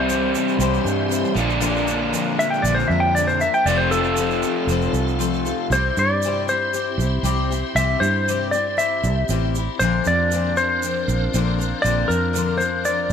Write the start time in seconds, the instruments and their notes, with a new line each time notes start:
Already playing: fingered electric bass C2, overdriven electric guitar C3 E3 G3 C4 E4, tonewheel organ C4 E4 G4, electric slide guitar C5
0.09 twelve-string acoustic guitar G3 C4 E4 C5, shaker
0.35 twelve-string acoustic guitar C4 E4 C5, shaker
0.49 shaker
0.59 fingered electric bass C2, twelve-string acoustic guitar C3 G3 C4 E4 C5, shaker
0.74 shaker
0.84 fingered electric bass G2, twelve-string acoustic guitar C4 E4 C5, shaker
1.09 twelve-string acoustic guitar G3 C4 E4 C5, shaker
1.25 shaker
1.34 fingered electric bass A#1, overdriven electric guitar A#2 D3 A#3 D4, twelve-string acoustic guitar F3 A#3 D4 A#4, tonewheel organ D4 F4 A#4, shaker
1.38 overdriven electric guitar F4
1.50 shaker
1.60 twelve-string acoustic guitar A#2 D3 F3 A#3 D4 A#4, shaker
1.76 shaker
1.88 twelve-string acoustic guitar F3 A#3 D4 A#4, shaker
2.13 twelve-string acoustic guitar F3 A#3 D4 A#4, shaker
2.39 twelve-string acoustic guitar F3 A#3 D4 A#4, electric slide guitar E5, shaker
2.50 electric slide guitar G5, shaker
2.62 fingered electric bass A#1, electric slide guitar D5, shaker
2.67 twelve-string acoustic guitar A#2 D3 F3 A#3 D4 A#4
2.75 electric slide guitar C5
2.80 shaker
2.88 fingered electric bass F2, twelve-string acoustic guitar D4 A#4, electric slide guitar E5
2.92 twelve-string acoustic guitar F3 A#3
3.00 electric slide guitar G5
3.15 twelve-string acoustic guitar F3 A#3, electric slide guitar D5, shaker
3.19 twelve-string acoustic guitar D4 A#4
3.27 electric slide guitar C5, shaker
3.41 twelve-string acoustic guitar A#3 D4 A#4, electric slide guitar E5, shaker
3.45 twelve-string acoustic guitar F3
3.54 electric slide guitar G5, shaker
3.63 fingered electric bass F1, overdriven electric guitar F2 C3 F3, twelve-string acoustic guitar F3, tonewheel organ C4 F4 A4, electric slide guitar D5, shaker
3.68 overdriven electric guitar A3 C4 F4, twelve-string acoustic guitar C4 F4 A4
3.78 electric slide guitar C5
3.91 twelve-string acoustic guitar F4 A4, electric slide guitar A4, shaker
3.96 twelve-string acoustic guitar C4
4.04 shaker
4.17 twelve-string acoustic guitar F3 C4 F4 A4, shaker
4.31 shaker
4.43 twelve-string acoustic guitar F4 A4, shaker
4.47 twelve-string acoustic guitar C4
4.67 fingered electric bass F1, twelve-string acoustic guitar F3 F4, shaker
4.71 twelve-string acoustic guitar C4 A4
4.82 shaker
4.93 fingered electric bass C2, twelve-string acoustic guitar C4 F4 A4, shaker
5.08 shaker
5.19 twelve-string acoustic guitar F3 C4 F4 A4, shaker
5.34 shaker
5.45 twelve-string acoustic guitar C4 F4 A4, shaker
5.70 fingered electric bass C2, twelve-string acoustic guitar C3 G3 C4 E4, tonewheel organ C4 E4 G4, electric slide guitar C5, shaker
5.74 twelve-string acoustic guitar G4
5.97 fingered electric bass G2, twelve-string acoustic guitar C4 E4 G4, electric slide guitar D5, shaker
6.22 twelve-string acoustic guitar C3 G3 C4 E4, shaker
6.27 twelve-string acoustic guitar G4
6.48 twelve-string acoustic guitar C4 E4 G4, electric slide guitar C5, shaker
6.73 twelve-string acoustic guitar G3 C4 E4 G4, shaker
6.98 fingered electric bass C2, twelve-string acoustic guitar E4 G4, shaker
7.02 twelve-string acoustic guitar C4
7.23 fingered electric bass C2, twelve-string acoustic guitar C3 G3 C4 E4 G4, shaker
7.51 twelve-string acoustic guitar C4 E4 G4, shaker
7.75 fingered electric bass C2, twelve-string acoustic guitar C3 G3 C4 E4 G4, electric slide guitar E5, shaker
8.00 fingered electric bass G2, twelve-string acoustic guitar E4 G4, electric slide guitar C5, shaker
8.05 twelve-string acoustic guitar C4
8.28 twelve-string acoustic guitar C3 G3 C4 E4 G4, shaker
8.51 twelve-string acoustic guitar E4 G4, electric slide guitar D5, shaker
8.56 twelve-string acoustic guitar C4
8.77 twelve-string acoustic guitar G3 C4 E4 G4, electric slide guitar E5, shaker
9.03 fingered electric bass C2, twelve-string acoustic guitar C4 E4 G4, shaker
9.29 fingered electric bass A1, twelve-string acoustic guitar C3 G3 C4 E4 G4, shaker
9.55 twelve-string acoustic guitar E4 G4, shaker
9.59 twelve-string acoustic guitar C4
9.78 fingered electric bass A#1, twelve-string acoustic guitar A#2 D3 F3 C4, tonewheel organ C4 D4 A#4, electric slide guitar C5, shaker
9.82 twelve-string acoustic guitar D4 A#4
10.05 fingered electric bass F2, twelve-string acoustic guitar D4 A#4, electric slide guitar D5, shaker
10.09 twelve-string acoustic guitar F3 C4
10.31 twelve-string acoustic guitar A#2 D3 F3 C4 D4 A#4, shaker
10.57 twelve-string acoustic guitar F3 C4 D4 A#4, electric slide guitar C5, shaker
10.83 twelve-string acoustic guitar F3 C4 D4 A#4, shaker
11.08 fingered electric bass A#1, twelve-string acoustic guitar F3 C4 D4 A#4, shaker
11.34 fingered electric bass A#1, twelve-string acoustic guitar A#2 D3 F3 C4 D4 A#4, shaker
11.58 twelve-string acoustic guitar F3 C4 D4 A#4, shaker
11.82 fingered electric bass A#1, twelve-string acoustic guitar A#2 D3 F3 C4 D4 A#4, electric slide guitar D5, shaker
12.08 fingered electric bass F2, twelve-string acoustic guitar C4 D4 A#4, electric slide guitar A#4, shaker
12.12 twelve-string acoustic guitar F3
12.33 twelve-string acoustic guitar A#2 D3 F3 C4 D4 A#4, shaker
12.57 twelve-string acoustic guitar F3 C4 D4 A#4, electric slide guitar C5, shaker
12.85 twelve-string acoustic guitar F3 C4 D4 A#4, electric slide guitar D5, shaker
13.10 fingered electric bass A#1